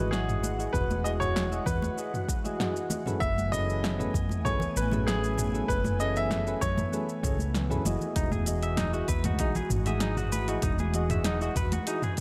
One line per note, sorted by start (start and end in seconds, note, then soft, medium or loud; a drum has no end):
0.00 0.66 G#1 loud
0.00 0.55 E3 medium
0.00 12.21 E3 medium
0.00 3.17 G#3 medium
0.00 0.55 E4 medium
0.00 0.55 F#4 medium
0.00 3.17 F#4 medium
0.00 0.55 G#4 medium
0.00 0.56 D#5 medium
0.00 3.17 F#5 medium
0.11 0.55 G#4 medium
0.11 snare medium
0.11 shaker soft
0.29 mid tom medium
0.29 shaker soft
0.43 high conga medium
0.43 shaker medium
0.58 0.80 E3 medium
0.58 0.80 E4 medium
0.58 0.81 F#4 medium
0.58 0.81 G#4 medium
0.58 0.81 D#5 medium
0.58 shaker soft
0.73 1.59 E1 medium
0.73 1.05 B4 medium
0.73 kick loud
0.73 mid tom medium
0.73 shaker soft
0.91 high conga medium
0.91 shaker soft
1.04 1.48 E3 medium
1.04 1.48 E4 medium
1.04 1.48 F#4 medium
1.04 1.48 G#4 medium
1.04 1.09 D#5 medium
1.04 1.48 D#5 medium
1.04 shaker medium
1.20 1.68 C#5 medium
1.20 mid tom medium
1.20 shaker soft
1.36 snare loud
1.36 high conga medium
1.36 shaker soft
1.51 1.65 E3 medium
1.51 1.65 E4 medium
1.51 1.65 F#4 medium
1.51 1.65 G#4 medium
1.51 1.66 D#5 medium
1.51 shaker soft
1.66 1.88 E2 medium
1.66 2.55 B4 medium
1.66 kick loud
1.66 mid tom medium
1.66 low conga medium
1.66 shaker medium
1.82 high conga loud
1.82 shaker soft
1.97 2.11 E3 medium
1.97 2.12 E4 medium
1.97 2.12 F#4 medium
1.97 2.12 G#4 medium
1.97 2.12 D#5 medium
1.97 shaker soft
2.14 mid tom medium
2.14 shaker soft
2.29 kick loud
2.29 shaker medium
2.44 3.02 E3 medium
2.44 3.02 E4 medium
2.44 3.03 F#4 medium
2.44 3.03 G#4 medium
2.44 3.03 D#5 medium
2.44 high conga medium
2.44 shaker soft
2.60 snare medium
2.60 mid tom medium
2.60 shaker soft
2.76 shaker soft
2.90 high conga medium
2.90 low conga medium
2.90 shaker medium
3.06 3.28 F#3 medium
3.06 3.28 C#4 medium
3.06 3.28 E4 medium
3.06 3.28 G#4 medium
3.06 3.28 A4 medium
3.06 3.29 B4 medium
3.06 mid tom medium
3.06 low conga medium
3.06 shaker soft
3.20 4.06 F#1 medium
3.20 8.12 A3 medium
3.20 8.12 B3 medium
3.20 3.49 E5 loud
3.20 8.12 G#5 medium
3.20 kick loud
3.20 shaker soft
3.38 high conga medium
3.38 shaker soft
3.52 3.95 F#3 medium
3.52 3.95 C#4 medium
3.52 3.95 E4 medium
3.52 3.96 G#4 medium
3.52 3.96 A4 medium
3.52 3.96 B4 medium
3.52 4.48 D#5 loud
3.52 mid tom medium
3.52 shaker medium
3.70 shaker soft
3.84 snare loud
3.84 high conga medium
3.84 shaker soft
3.98 4.12 F#3 medium
3.98 4.12 C#4 medium
3.98 4.12 E4 medium
3.98 4.12 G#4 medium
3.98 4.13 A4 medium
3.98 4.13 B4 medium
3.98 mid tom medium
3.98 shaker soft
4.14 4.45 F#2 medium
4.14 kick loud
4.14 low conga medium
4.14 shaker medium
4.29 high conga medium
4.29 shaker soft
4.45 4.66 C#2 medium
4.45 4.59 F#3 medium
4.45 4.59 C#4 medium
4.45 4.60 E4 medium
4.45 4.60 G#4 medium
4.45 4.60 A4 medium
4.45 4.60 B4 medium
4.45 4.74 C#5 medium
4.45 kick loud
4.45 mid tom medium
4.45 shaker soft
4.60 low conga loud
4.60 shaker soft
4.76 5.61 A1 loud
4.76 5.08 B4 medium
4.76 shaker medium
4.91 5.50 F#3 medium
4.91 5.50 A3 medium
4.91 5.50 C#4 medium
4.91 5.50 E4 medium
4.91 5.50 G#4 medium
4.91 5.51 B4 medium
4.91 mid tom medium
4.91 high conga medium
4.91 low conga medium
4.91 shaker soft
5.07 5.50 G#4 medium
5.07 snare loud
5.07 shaker soft
5.24 shaker soft
5.38 mid tom medium
5.38 high conga medium
5.38 shaker medium
5.53 5.75 F#3 medium
5.53 5.75 C#4 medium
5.53 5.76 E4 medium
5.53 5.76 G#4 medium
5.53 5.76 A4 medium
5.53 5.76 B4 medium
5.53 shaker soft
5.68 6.54 F#1 medium
5.68 5.97 B4 medium
5.68 kick loud
5.68 shaker soft
5.84 mid tom medium
5.84 high conga loud
5.84 shaker soft
6.00 6.43 F#3 medium
6.00 6.43 C#4 medium
6.00 6.43 E4 medium
6.00 6.43 G#4 medium
6.00 6.43 A4 medium
6.00 6.44 B4 medium
6.00 6.16 D#5 medium
6.00 shaker medium
6.16 6.59 E5 medium
6.16 shaker soft
6.31 snare medium
6.31 mid tom medium
6.31 high conga medium
6.31 shaker soft
6.47 6.60 F#3 medium
6.47 6.60 C#4 medium
6.47 6.60 E4 medium
6.47 6.60 G#4 medium
6.47 6.60 A4 medium
6.47 6.60 B4 medium
6.47 shaker soft
6.61 6.83 F#2 medium
6.61 7.50 C#5 medium
6.61 kick loud
6.61 low conga medium
6.61 shaker medium
6.78 mid tom medium
6.78 high conga medium
6.78 shaker soft
6.92 7.06 F#3 medium
6.92 7.07 C#4 medium
6.92 7.07 E4 medium
6.92 7.07 G#4 medium
6.92 7.07 A4 medium
6.92 7.07 B4 medium
6.92 shaker soft
7.09 shaker soft
7.23 7.77 C#2 medium
7.23 7.37 F#3 medium
7.23 7.37 C#4 medium
7.23 7.37 E4 medium
7.23 7.38 G#4 medium
7.23 7.38 A4 medium
7.23 7.38 C#5 medium
7.23 kick loud
7.23 mid tom medium
7.23 shaker medium
7.39 high conga medium
7.39 shaker soft
7.54 snare medium
7.54 shaker soft
7.69 7.83 F#3 medium
7.69 7.83 C#4 medium
7.69 7.83 E4 medium
7.69 7.83 G#4 medium
7.69 7.83 A4 medium
7.69 7.83 B4 medium
7.69 mid tom medium
7.69 shaker soft
7.84 7.96 F#1 medium
7.84 8.43 E3 medium
7.84 8.43 E4 medium
7.84 8.43 F#4 medium
7.84 8.44 G#4 medium
7.84 8.44 D#5 medium
7.84 high conga loud
7.84 low conga medium
7.84 shaker medium
8.01 low conga medium
8.01 shaker soft
8.16 9.01 E1 medium
8.16 12.21 G#3 medium
8.16 8.30 D#4 medium
8.16 12.21 F#4 medium
8.16 kick loud
8.16 closed hi-hat soft
8.16 shaker soft
8.32 8.45 G#4 medium
8.32 mid tom medium
8.32 high conga medium
8.32 shaker soft
8.46 8.90 E3 medium
8.46 8.90 F#4 medium
8.46 8.90 G#4 medium
8.46 8.90 D#5 medium
8.46 closed hi-hat soft
8.46 shaker medium
8.63 8.77 E5 medium
8.63 closed hi-hat soft
8.63 shaker soft
8.77 8.92 D#4 loud
8.77 snare medium
8.77 closed hi-hat soft
8.77 mid tom medium
8.77 high conga medium
8.77 shaker soft
8.93 9.07 E3 medium
8.93 9.07 E4 medium
8.93 9.07 F#4 medium
8.93 9.07 G#4 medium
8.93 9.07 D#5 medium
8.93 shaker soft
9.08 9.40 E2 medium
9.08 9.24 B4 medium
9.08 kick loud
9.08 closed hi-hat soft
9.08 low conga medium
9.08 shaker medium
9.24 9.39 F#4 medium
9.24 closed hi-hat soft
9.24 mid tom medium
9.24 high conga medium
9.24 shaker soft
9.39 9.61 B1 medium
9.39 9.54 E3 medium
9.39 9.54 D#4 loud
9.39 9.54 E4 medium
9.39 9.54 F#4 medium
9.39 9.54 G#4 medium
9.39 9.54 D#5 medium
9.39 kick loud
9.39 closed hi-hat medium
9.39 shaker soft
9.55 9.69 G#4 medium
9.55 low conga medium
9.55 shaker soft
9.70 10.55 G#1 loud
9.70 mid tom medium
9.70 shaker medium
9.86 10.44 E3 medium
9.86 10.45 F#4 medium
9.86 10.45 G#4 medium
9.86 10.01 E5 medium
9.86 10.45 D#6 medium
9.86 closed hi-hat soft
9.86 high conga medium
9.86 low conga medium
9.86 shaker soft
10.00 10.16 D#4 medium
10.00 snare medium
10.00 closed hi-hat soft
10.00 shaker soft
10.17 10.31 F#4 medium
10.17 mid tom medium
10.17 shaker soft
10.32 10.48 B4 medium
10.32 high conga medium
10.32 shaker medium
10.48 10.70 E3 medium
10.48 10.70 E4 medium
10.48 10.63 F#4 medium
10.48 10.70 F#4 medium
10.48 10.70 G#4 medium
10.48 10.71 D#5 medium
10.48 closed hi-hat soft
10.48 shaker soft
10.62 11.48 E1 medium
10.62 10.78 D#4 medium
10.62 kick loud
10.62 closed hi-hat medium
10.62 mid tom medium
10.62 shaker soft
10.79 10.93 G#4 medium
10.79 high conga medium
10.79 shaker soft
10.94 11.37 E3 medium
10.94 11.38 F#4 medium
10.94 11.38 G#4 medium
10.94 11.38 D#5 medium
10.94 closed hi-hat soft
10.94 shaker medium
11.10 11.25 E5 medium
11.10 closed hi-hat soft
11.10 mid tom medium
11.10 shaker soft
11.24 11.40 D#4 loud
11.24 snare medium
11.24 closed hi-hat medium
11.24 high conga medium
11.24 shaker soft
11.41 11.54 E3 medium
11.41 11.55 E4 medium
11.41 11.55 F#4 medium
11.41 11.55 G#4 medium
11.41 11.55 D#5 medium
11.41 shaker soft
11.56 11.77 E2 medium
11.56 11.72 B4 loud
11.56 kick medium
11.56 closed hi-hat soft
11.56 mid tom medium
11.56 low conga medium
11.56 shaker medium
11.72 11.87 F#4 medium
11.72 closed hi-hat soft
11.72 high conga medium
11.72 shaker soft
11.87 12.01 E3 medium
11.87 12.02 D#4 loud
11.87 12.01 E4 medium
11.87 12.01 F#4 medium
11.87 12.01 G#4 medium
11.87 12.02 D#5 medium
11.87 closed hi-hat medium
11.87 shaker soft
12.02 12.17 G#4 medium
12.02 mid tom medium
12.02 shaker soft
12.17 closed hi-hat soft